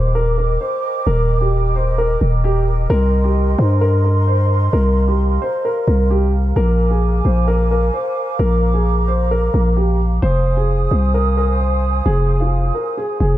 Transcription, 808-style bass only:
0.00 0.58 D#1 loud
1.07 2.17 D#1 loud
2.21 2.87 D#1 loud
2.90 3.56 C2 loud
3.59 4.69 G2 loud
4.73 5.39 C2 loud
5.88 6.54 C2 loud
6.56 7.22 A#1 loud
7.25 7.91 A#1 loud
8.39 9.50 A#1 loud
9.54 10.20 A#1 loud
10.23 10.89 F1 loud
10.91 12.02 C2 loud
12.06 12.72 F1 loud
13.20 13.38 F1 loud

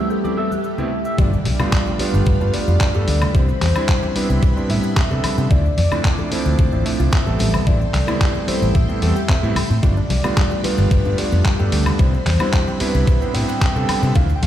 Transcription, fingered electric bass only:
1.19 1.35 G1 medium
1.45 1.54 B1 medium
2.14 2.22 G1 medium
2.27 2.35 G1 loud
2.41 2.49 G2 medium
2.68 2.76 F2 medium
2.95 3.03 G2 loud
3.08 3.25 D2 medium
3.35 3.52 C2 loud
3.62 3.70 E2 medium
4.16 muted fingered electric bass stroke soft
4.30 4.38 C2 medium
4.43 4.51 C2 loud
4.70 4.78 A2 medium
5.11 5.23 C3 medium
5.24 muted fingered electric bass stroke soft
5.38 5.46 C3 loud
5.51 5.68 D2 loud
5.78 5.87 F2 medium
6.46 6.54 D2 medium
6.59 6.67 D2 loud
6.73 6.81 A1 medium
7.00 7.08 C2 medium
7.27 7.35 A1 medium
7.40 7.57 A1 medium
7.67 7.84 A1 medium
7.94 8.03 C2 medium
8.48 muted fingered electric bass stroke soft
8.62 8.70 A1 medium
8.75 8.84 A1 loud
9.02 9.11 E2 medium
9.43 9.56 A2 medium
9.56 muted fingered electric bass stroke soft
9.70 9.78 A2 loud
9.83 10.00 G1 loud
10.10 10.19 B1 medium
10.78 10.86 G1 medium
10.91 11.00 G1 loud
11.05 11.13 G2 medium
11.32 11.40 F2 medium
11.60 11.68 G2 loud
11.72 11.89 D2 medium
11.99 12.16 C2 medium
12.27 12.35 E2 medium
12.81 muted fingered electric bass stroke soft
12.95 13.03 C2 medium
13.07 13.16 C2 loud
13.35 13.43 A2 medium
13.76 13.88 C3 medium
13.89 muted fingered electric bass stroke soft
14.03 14.11 C3 loud
14.16 14.33 D2 medium
14.43 14.47 F2 medium

